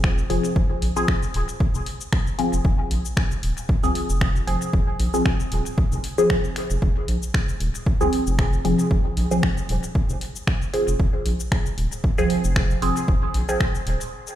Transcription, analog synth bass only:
0.00 0.23 F1 medium
0.30 0.39 F1 medium
0.56 0.65 F1 loud
0.82 0.91 A#1 loud
1.34 1.43 D#1 loud
1.75 1.82 F1 loud
2.53 2.60 F1 medium
2.65 2.74 F1 loud
2.91 3.00 A#1 loud
3.43 3.52 D#1 loud
3.83 3.91 C2 medium
4.09 4.40 F1 loud
4.47 4.56 F1 medium
4.73 4.82 F1 medium
4.99 5.08 A#1 loud
5.52 5.61 D#1 loud
5.92 6.00 F1 loud
6.70 6.78 F1 medium
6.82 6.91 F1 loud
7.08 7.17 A#1 loud
7.60 7.69 D#1 loud
8.01 8.08 C2 medium
8.27 8.58 F1 medium
8.65 8.74 F1 medium
8.91 9.00 F1 medium
9.17 9.26 A#1 loud
9.69 9.78 D#1 loud
10.10 10.17 F1 loud
10.88 10.95 F1 medium
11.00 11.09 F1 loud
11.26 11.35 A#1 medium
11.78 11.87 D#1 loud
12.18 12.26 C2 medium
12.44 12.75 F1 loud
12.82 12.91 F1 medium
13.08 13.17 F1 loud
13.34 13.43 A#1 loud
13.86 13.95 D#1 loud

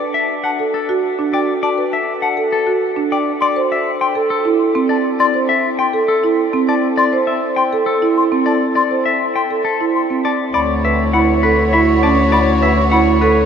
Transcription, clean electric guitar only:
0.14 0.34 E5 soft
0.44 0.64 F#5 soft
0.74 0.93 A4 medium
1.33 1.53 D5 medium
1.63 1.83 D5 medium
1.93 2.12 E5 soft
2.22 2.42 F#5 soft
2.52 2.72 A4 medium
3.12 3.31 D5 medium
3.42 3.61 D5 medium
3.72 3.91 E5 soft
4.01 4.20 G5 medium
4.30 4.50 A4 medium
4.89 5.09 D5 medium
5.20 5.39 D5 medium
5.49 5.69 E5 medium
5.79 5.98 G5 medium
6.08 6.28 A4 medium
6.69 6.88 D5 medium
6.97 7.17 D5 medium
7.27 7.47 E5 soft
7.56 7.76 G5 medium
7.86 8.06 A4 medium
8.46 8.66 D5 medium
8.75 8.95 D5 medium
9.06 9.25 E5 soft
9.36 9.55 G5 soft
9.65 9.84 A4 medium
10.25 10.44 D5 medium
10.54 10.74 D5 medium
10.85 11.04 E5 soft
11.13 11.33 F#5 medium
11.43 11.63 B4 medium
11.73 11.92 E5 medium
12.03 12.22 D5 medium
12.32 12.52 D5 medium
12.62 12.82 E5 soft
12.91 13.11 F#5 soft
13.21 13.41 B4 medium

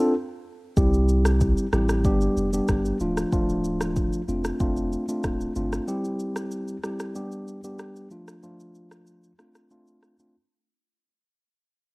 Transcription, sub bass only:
0.77 1.54 C2 loud
1.73 2.06 A1 medium
2.05 2.28 G1 loud
2.37 2.60 F1 medium
2.69 2.92 G1 medium
3.01 3.24 D1 loud
3.33 4.09 D1 loud
4.28 4.52 F1 loud
4.60 4.96 F1 loud
5.24 5.47 D1 medium
5.56 5.79 G1 medium

